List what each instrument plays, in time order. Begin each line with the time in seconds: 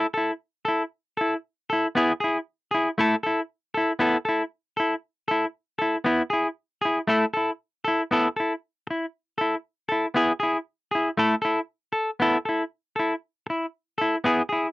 0.14 clean electric guitar E4 A4
0.65 clean electric guitar E4 A4
1.17 clean electric guitar E4 A4
1.70 clean electric guitar E4 A4
1.95 clean electric guitar B3 E4 G#4
2.20 clean electric guitar E4 G#4
2.71 clean electric guitar E4 G#4
2.98 clean electric guitar A3 E4 A4
3.23 clean electric guitar E4 A4
3.74 clean electric guitar E4 A4
3.99 clean electric guitar B3 E4 A4
4.25 clean electric guitar E4 A4
4.77 clean electric guitar E4 A4
5.28 clean electric guitar E4 A4
5.79 clean electric guitar E4 A4
6.04 clean electric guitar B3 E4, muted clean electric guitar stroke
6.30 clean electric guitar E4 G#4
6.82 clean electric guitar E4 G#4
7.07 clean electric guitar A3 E4 A4
7.34 clean electric guitar E4 A4
7.84 clean electric guitar E4 A4
8.11 clean electric guitar B3 E4 A4
8.36 clean electric guitar E4 A4
8.87 clean electric guitar E4, muted clean electric guitar stroke
9.38 clean electric guitar E4 A4
9.89 clean electric guitar E4 A4
10.14 clean electric guitar B3 E4 G#4
10.40 clean electric guitar E4 G#4
10.91 clean electric guitar E4 G#4
11.17 clean electric guitar A3 E4 A4
11.42 clean electric guitar E4 A4
11.93 clean electric guitar A4
12.20 clean electric guitar B3 E4 A4
12.45 clean electric guitar E4 A4
12.96 clean electric guitar E4 A4
13.47 clean electric guitar E4, muted clean electric guitar stroke
13.98 clean electric guitar E4 A4
14.24 clean electric guitar B3 E4 G#4
14.49 clean electric guitar E4 G#4